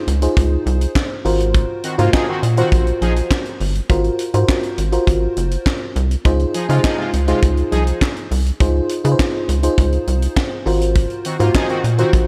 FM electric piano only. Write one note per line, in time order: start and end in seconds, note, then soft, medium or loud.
0.22 1.12 D#4 medium
0.22 1.12 F4 medium
0.22 1.12 G#4 medium
0.22 1.12 C5 medium
1.25 1.84 F4 medium
1.25 1.84 F#4 medium
1.25 1.84 A#4 medium
1.25 1.84 C5 loud
1.98 2.43 F4 medium
1.98 2.43 F#4 medium
1.98 2.44 A#4 medium
1.98 2.44 C5 loud
2.57 3.47 F4 medium
2.57 3.47 F#4 medium
2.57 3.47 A#4 medium
2.57 3.47 C5 loud
3.90 4.23 F4 medium
3.90 4.23 F#4 medium
3.90 4.24 A#4 medium
3.90 4.24 C5 medium
4.34 4.79 F4 medium
4.34 4.79 F#4 medium
4.34 4.79 A#4 medium
4.34 4.79 C5 loud
4.92 5.82 F4 medium
4.92 5.82 F#4 medium
4.92 5.83 A#4 medium
4.92 5.83 C5 loud
6.25 6.59 D#4 medium
6.25 6.59 F4 medium
6.25 6.59 G#4 medium
6.25 6.59 C5 loud
6.69 7.14 D#4 loud
6.69 7.14 F4 medium
6.69 7.14 G#4 medium
6.69 7.14 C5 loud
7.28 8.18 D#4 medium
7.28 8.18 F4 medium
7.28 8.18 G#4 medium
7.28 8.18 C5 loud
8.60 8.94 D#4 medium
8.60 8.94 F4 medium
8.60 8.94 G#4 medium
8.60 8.94 C5 loud
9.04 9.49 D#4 medium
9.04 9.49 F4 medium
9.04 9.49 G#4 medium
9.04 9.11 B4 medium
9.12 9.53 C5 loud
9.63 10.53 D#4 medium
9.63 10.53 F4 medium
9.63 10.53 G#4 medium
9.63 10.53 C5 loud
10.66 11.25 F4 medium
10.66 11.25 F#4 medium
10.66 11.25 A#4 medium
10.66 11.25 C5 medium
11.39 11.84 F4 medium
11.39 11.85 F#4 medium
11.39 11.85 A#4 medium
11.39 11.85 C5 medium
11.98 12.27 F4 medium
11.98 12.27 F#4 medium
11.98 12.27 A#4 medium
11.98 12.27 C5 medium